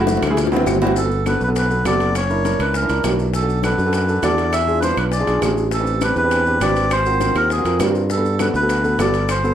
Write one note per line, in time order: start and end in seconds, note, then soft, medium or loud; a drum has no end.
0.00 0.17 F#1 medium
0.00 0.21 A3 loud
0.00 0.21 E4 loud
0.00 0.21 F#4 loud
0.07 high bongo loud
0.07 maracas medium
0.17 high bongo medium
0.22 0.64 D2 loud
0.22 high timbale medium
0.22 claves medium
0.22 maracas soft
0.27 0.37 A3 loud
0.27 0.37 E4 medium
0.27 0.38 G#4 loud
0.27 high bongo medium
0.37 low bongo loud
0.37 high timbale medium
0.37 maracas medium
0.47 low bongo loud
0.52 0.73 C4 medium
0.52 0.73 E4 medium
0.52 0.73 F#4 medium
0.52 high timbale medium
0.52 maracas soft
0.57 low bongo loud
0.66 1.35 G1 medium
0.66 low bongo loud
0.66 low timbale medium
0.66 claves medium
0.66 maracas medium
0.76 low bongo medium
0.82 0.97 C4 medium
0.82 0.97 E4 medium
0.82 0.97 F#4 loud
0.82 low timbale medium
0.82 maracas soft
0.87 low bongo medium
0.96 1.25 A4 medium
0.96 high bongo medium
0.96 maracas medium
1.04 1.19 B3 medium
1.04 1.19 F#4 medium
1.04 1.20 A4 medium
1.11 high bongo soft
1.11 maracas soft
1.26 1.42 B3 medium
1.26 1.42 F#4 medium
1.26 1.42 A4 medium
1.26 1.42 B4 medium
1.26 high bongo medium
1.26 high timbale medium
1.26 low timbale medium
1.26 claves medium
1.26 maracas medium
1.41 1.82 B1 medium
1.41 1.49 B4 medium
1.41 high bongo soft
1.41 maracas soft
1.48 1.64 B3 medium
1.48 1.64 F#4 medium
1.48 1.64 A4 medium
1.56 1.85 B4 medium
1.56 high bongo medium
1.56 high timbale medium
1.56 maracas medium
1.71 1.81 B3 medium
1.71 1.81 F#4 medium
1.71 1.81 A4 medium
1.71 maracas soft
1.85 2.54 F#1 medium
1.85 2.15 B3 medium
1.85 2.15 F#4 medium
1.85 2.15 A4 medium
1.85 2.14 D5 medium
1.85 high bongo soft
1.85 low bongo medium
1.85 high timbale medium
1.85 low timbale medium
1.85 claves medium
1.85 maracas medium
2.00 high bongo soft
2.00 high timbale medium
2.00 maracas soft
2.15 2.62 C#5 medium
2.15 high bongo medium
2.15 high timbale medium
2.15 claves medium
2.15 maracas medium
2.30 2.41 D4 medium
2.30 2.41 E4 medium
2.30 2.41 A#4 medium
2.30 high bongo soft
2.30 maracas soft
2.45 2.71 D4 medium
2.45 2.71 E4 medium
2.45 2.71 A#4 medium
2.45 high bongo medium
2.45 high timbale medium
2.45 low timbale medium
2.45 maracas medium
2.59 2.87 C#2 medium
2.59 2.76 B4 medium
2.59 high bongo soft
2.59 high timbale medium
2.59 claves medium
2.59 maracas soft
2.74 3.03 A#4 medium
2.74 high bongo medium
2.74 maracas medium
2.82 2.87 D4 medium
2.82 2.87 E4 medium
2.82 2.87 A#4 medium
2.89 3.03 C#2 medium
2.89 3.26 D4 medium
2.89 3.26 E4 medium
2.89 3.26 A#4 medium
2.89 high timbale medium
2.89 maracas soft
3.04 3.73 B1 medium
3.04 high bongo soft
3.04 low bongo medium
3.04 high timbale medium
3.04 low timbale medium
3.04 claves medium
3.04 maracas medium
3.19 high bongo soft
3.19 maracas soft
3.34 3.62 A4 medium
3.34 high bongo medium
3.34 maracas medium
3.42 3.57 D4 medium
3.42 3.57 F#4 medium
3.42 3.57 A4 medium
3.48 high bongo soft
3.48 maracas soft
3.63 3.79 D4 medium
3.63 3.79 F#4 medium
3.63 3.79 A4 medium
3.63 3.93 B4 medium
3.63 high bongo medium
3.63 high timbale medium
3.63 low timbale medium
3.63 claves medium
3.63 maracas medium
3.78 4.20 F#2 medium
3.78 high bongo soft
3.78 maracas soft
3.86 4.02 D4 medium
3.86 4.02 F#4 medium
3.86 4.02 A4 medium
3.93 4.25 B4 medium
3.93 high bongo medium
3.93 high timbale medium
3.93 maracas medium
4.08 4.19 D4 medium
4.08 4.19 F#4 medium
4.08 4.19 A4 medium
4.08 maracas soft
4.23 4.92 E2 medium
4.23 4.53 D4 medium
4.23 4.53 F#4 medium
4.23 4.53 A4 medium
4.23 4.54 D5 medium
4.23 high bongo soft
4.23 low bongo medium
4.23 high timbale medium
4.23 low timbale medium
4.23 claves medium
4.23 maracas medium
4.38 high bongo soft
4.38 high timbale medium
4.38 maracas soft
4.53 4.80 E5 medium
4.53 high bongo medium
4.53 high timbale medium
4.53 claves medium
4.53 maracas medium
4.67 4.78 D4 medium
4.67 4.78 F4 medium
4.67 4.78 G#4 medium
4.67 high bongo soft
4.67 maracas soft
4.80 5.08 D4 medium
4.80 5.09 F4 medium
4.80 4.83 B4 medium
4.80 5.09 B4 medium
4.80 4.98 C5 medium
4.80 high bongo medium
4.80 high timbale medium
4.80 low timbale medium
4.80 maracas medium
4.97 5.25 B1 medium
4.97 5.05 B4 medium
4.97 high bongo soft
4.97 high timbale medium
4.97 claves medium
4.97 maracas soft
5.12 5.40 D5 medium
5.12 high bongo medium
5.12 maracas medium
5.20 5.25 D4 medium
5.20 5.25 F4 medium
5.20 5.25 G#4 medium
5.27 5.41 B1 medium
5.27 5.64 D4 medium
5.27 5.64 F4 medium
5.27 5.64 G#4 medium
5.27 high timbale medium
5.27 maracas soft
5.42 6.11 A1 medium
5.42 high bongo soft
5.42 low bongo medium
5.42 high timbale medium
5.42 low timbale medium
5.42 claves medium
5.42 maracas medium
5.57 high bongo soft
5.57 maracas soft
5.71 6.03 A4 medium
5.71 high bongo medium
5.71 maracas medium
5.79 5.95 C4 medium
5.79 5.95 D4 medium
5.79 5.95 G4 medium
5.79 5.95 B4 medium
5.87 high bongo soft
5.87 maracas soft
6.01 6.17 C4 medium
6.01 6.17 D4 medium
6.01 6.17 G4 medium
6.01 6.17 B4 medium
6.01 6.16 B4 medium
6.01 high bongo medium
6.01 high timbale medium
6.01 low timbale soft
6.01 claves medium
6.01 maracas medium
6.16 6.58 E2 medium
6.16 6.63 B4 loud
6.16 high bongo soft
6.16 maracas soft
6.24 6.40 C4 medium
6.24 6.40 D4 medium
6.24 6.40 G4 medium
6.24 6.40 B4 medium
6.31 high bongo medium
6.31 high timbale medium
6.31 maracas medium
6.46 6.57 C4 medium
6.46 6.57 D4 medium
6.46 6.57 G4 medium
6.46 6.57 B4 medium
6.46 maracas soft
6.60 7.30 G#1 medium
6.60 6.91 C4 medium
6.60 6.91 D4 medium
6.60 6.91 G4 medium
6.60 6.91 B4 medium
6.60 6.92 D5 medium
6.60 high bongo soft
6.60 low bongo medium
6.60 high timbale medium
6.60 low timbale medium
6.60 claves medium
6.60 maracas medium
6.76 high bongo soft
6.76 high timbale medium
6.76 maracas soft
6.91 7.37 C5 medium
6.91 high bongo medium
6.91 high timbale medium
6.91 claves medium
6.91 maracas medium
7.06 7.16 C4 medium
7.06 7.16 F4 medium
7.06 7.16 F#4 medium
7.06 7.16 A#4 medium
7.06 high bongo soft
7.06 maracas soft
7.21 7.47 C4 medium
7.21 7.47 F4 medium
7.21 7.47 F#4 medium
7.21 7.47 A#4 medium
7.21 high bongo medium
7.21 high timbale medium
7.21 low timbale medium
7.21 maracas medium
7.35 7.63 D#2 medium
7.35 7.51 A#4 medium
7.35 high bongo soft
7.35 high timbale medium
7.35 claves medium
7.35 maracas soft
7.50 7.79 G#4 medium
7.50 high bongo medium
7.50 maracas medium
7.58 7.63 C4 medium
7.58 7.63 F4 medium
7.58 7.63 F#4 medium
7.58 7.63 A#4 medium
7.65 7.79 F2 medium
7.65 8.02 C4 medium
7.65 8.02 F4 medium
7.65 8.02 F#4 medium
7.65 8.02 A#4 medium
7.65 high timbale medium
7.65 maracas soft
7.79 8.49 G2 medium
7.79 high bongo soft
7.79 low bongo medium
7.79 high timbale medium
7.79 low timbale medium
7.79 claves medium
7.79 maracas medium
7.95 high bongo soft
7.95 maracas soft
8.10 8.41 A4 medium
8.10 high bongo medium
8.10 maracas medium
8.17 8.33 B3 medium
8.17 8.33 F#4 medium
8.17 8.33 A4 medium
8.25 high bongo soft
8.25 maracas soft
8.39 8.55 B3 medium
8.39 8.55 F#4 medium
8.39 8.55 A4 medium
8.39 8.48 B4 medium
8.39 high bongo medium
8.39 high timbale medium
8.39 low timbale medium
8.39 claves medium
8.39 maracas medium
8.54 8.96 D2 medium
8.54 9.01 B4 medium
8.54 high bongo soft
8.54 maracas soft
8.62 8.78 B3 medium
8.62 8.78 F#4 medium
8.62 8.78 A4 medium
8.69 high bongo medium
8.69 high timbale medium
8.69 maracas medium
8.84 8.95 B3 medium
8.84 8.95 F#4 medium
8.84 8.95 A4 medium
8.84 maracas soft
8.98 9.54 G1 medium
8.98 9.31 B3 medium
8.98 9.31 F#4 medium
8.98 9.31 A4 medium
8.98 9.30 D5 medium
8.98 high bongo soft
8.98 low bongo medium
8.98 high timbale medium
8.98 low timbale medium
8.98 claves medium
8.98 maracas medium
9.14 high bongo soft
9.14 high timbale medium
9.14 maracas soft
9.29 9.54 C5 medium
9.29 high bongo medium
9.29 high timbale medium
9.29 claves medium
9.29 maracas medium
9.44 9.54 B3 medium
9.44 9.54 F#4 medium
9.44 9.54 A4 medium
9.44 high bongo soft
9.44 maracas soft